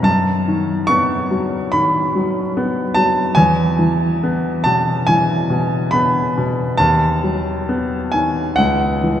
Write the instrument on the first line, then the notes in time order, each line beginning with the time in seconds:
grand piano
0.03 F#2 A5
0.48 D#3
0.87 B3 C#6
1.31 F#3
1.72 D#3 B5
2.15 F#3
2.57 B3
2.94 F#3 A5
3.35 E2 G#5
3.79 E3
4.23 B3
4.64 B2 A5
5.07 E3 G#5
5.50 B2
5.91 B3 B5
6.38 B2
6.78 D#2 A5
7.24 F#3
7.69 B3
8.12 D#3 G#5
8.56 C#2 F#5
9.04 E3